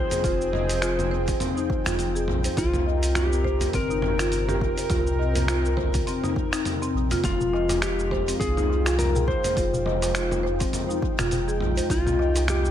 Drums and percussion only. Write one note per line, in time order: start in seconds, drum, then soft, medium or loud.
0.11 mid tom medium
0.11 open hi-hat medium
0.11 cabasa medium
0.24 kick loud
0.24 open hi-hat soft
0.24 cabasa medium
0.41 cabasa soft
0.53 mid tom medium
0.69 open hi-hat medium
0.69 cabasa medium
0.82 finger snap medium
0.82 open hi-hat soft
0.82 cabasa medium
0.99 mid tom medium
0.99 cabasa soft
1.28 kick loud
1.28 open hi-hat medium
1.28 cabasa medium
1.40 mid tom medium
1.40 open hi-hat soft
1.40 cabasa medium
1.57 cabasa soft
1.70 kick loud
1.86 finger snap medium
1.86 mid tom medium
1.86 open hi-hat medium
1.86 cabasa medium
1.99 open hi-hat soft
1.99 cabasa medium
2.16 cabasa soft
2.28 mid tom medium
2.44 open hi-hat medium
2.44 cabasa medium
2.57 kick loud
2.57 open hi-hat soft
2.57 cabasa medium
2.73 mid tom medium
2.73 cabasa soft
3.03 open hi-hat medium
3.03 cabasa medium
3.15 finger snap medium
3.15 mid tom medium
3.15 open hi-hat soft
3.15 cabasa soft
3.33 cabasa soft
3.45 kick soft
3.61 mid tom medium
3.61 open hi-hat medium
3.61 cabasa medium
3.73 kick medium
3.73 open hi-hat soft
3.73 cabasa medium
3.91 cabasa soft
4.02 mid tom medium
4.19 finger snap medium
4.19 open hi-hat medium
4.19 cabasa medium
4.32 open hi-hat soft
4.32 cabasa medium
4.49 mid tom medium
4.49 cabasa soft
4.61 kick loud
4.78 open hi-hat medium
4.78 cabasa medium
4.90 kick loud
4.90 mid tom medium
4.90 open hi-hat soft
4.90 cabasa medium
5.07 cabasa soft
5.35 mid tom medium
5.35 open hi-hat medium
5.35 cabasa medium
5.48 finger snap medium
5.48 open hi-hat soft
5.48 cabasa soft
5.65 cabasa soft
5.77 kick medium
5.77 mid tom medium
5.94 kick loud
5.94 open hi-hat medium
5.94 cabasa medium
6.07 open hi-hat soft
6.07 cabasa medium
6.24 mid tom medium
6.24 cabasa soft
6.36 kick loud
6.53 finger snap medium
6.53 open hi-hat medium
6.53 cabasa medium
6.65 mid tom medium
6.65 open hi-hat soft
6.65 cabasa soft
6.82 cabasa soft
7.11 mid tom medium
7.11 open hi-hat medium
7.11 cabasa medium
7.24 kick loud
7.24 mid tom medium
7.24 open hi-hat soft
7.24 cabasa medium
7.41 darbuka dum medium
7.41 cabasa soft
7.53 darbuka tek medium
7.69 mid tom medium
7.69 open hi-hat medium
7.69 darbuka ka medium
7.69 darbuka tek medium
7.69 cabasa medium
7.82 finger snap medium
7.82 open hi-hat soft
7.82 cabasa medium
7.99 cabasa soft
8.11 kick medium
8.11 mid tom medium
8.11 darbuka ka medium
8.28 open hi-hat medium
8.28 darbuka ka soft
8.28 cabasa medium
8.40 kick loud
8.40 open hi-hat soft
8.40 cabasa medium
8.57 mid tom medium
8.57 cabasa soft
8.70 darbuka ka medium
8.86 finger snap medium
8.86 open hi-hat medium
8.86 darbuka tek medium
8.86 cabasa medium
8.99 mid tom medium
8.99 open hi-hat soft
8.99 cabasa medium
9.15 darbuka dum loud
9.15 cabasa soft
9.28 kick loud
9.44 mid tom medium
9.44 open hi-hat medium
9.44 cabasa medium
9.57 kick loud
9.57 open hi-hat soft
9.57 cabasa medium
9.73 darbuka dum medium
9.73 cabasa soft
9.86 mid tom medium
9.86 darbuka tek medium
10.02 open hi-hat medium
10.02 darbuka ka medium
10.02 darbuka tek medium
10.02 cabasa medium
10.15 finger snap medium
10.15 open hi-hat soft
10.15 cabasa medium
10.31 mid tom medium
10.31 darbuka tek medium
10.31 cabasa soft
10.45 darbuka ka medium
10.60 kick loud
10.60 open hi-hat medium
10.60 darbuka tek soft
10.60 cabasa medium
10.73 mid tom medium
10.73 open hi-hat soft
10.73 cabasa medium
10.90 cabasa soft
11.02 kick loud
11.19 finger snap medium
11.19 mid tom medium
11.19 open hi-hat medium
11.19 darbuka dum medium
11.19 cabasa medium
11.31 open hi-hat soft
11.31 darbuka dum medium
11.31 cabasa medium
11.49 cabasa soft
11.61 mid tom medium
11.77 open hi-hat medium
11.77 cabasa medium
11.90 kick loud
11.90 open hi-hat soft
11.90 cabasa medium
12.06 mid tom medium
12.06 darbuka dum medium
12.06 cabasa soft
12.19 darbuka tek medium
12.36 open hi-hat medium
12.36 darbuka ka medium
12.36 darbuka tek medium
12.36 cabasa medium
12.48 finger snap medium
12.48 mid tom medium
12.48 open hi-hat soft
12.48 cabasa medium
12.65 cabasa soft